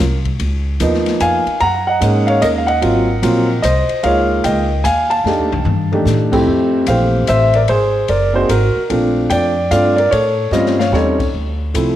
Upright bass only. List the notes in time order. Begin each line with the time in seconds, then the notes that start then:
0.00 C2
0.40 C#2
0.80 D#2
1.20 F2
1.46 muted upright bass stroke
1.61 F#2
2.01 G#2
2.42 D#2
2.82 G#1
3.23 A#1
3.63 C2
3.89 muted upright bass stroke
4.03 C#2
4.44 C#2
4.84 D#2
5.24 F2
5.38 D#2
5.52 C2
5.65 G2
6.05 A2
6.47 F2
6.87 A#1
7.28 A1
7.68 G#1
8.09 F#1
8.49 G#1
8.75 muted upright bass stroke
8.90 A#1
9.30 F2
9.71 G2
10.12 A2
10.51 G2
10.92 D#2
11.34 D2
11.74 C2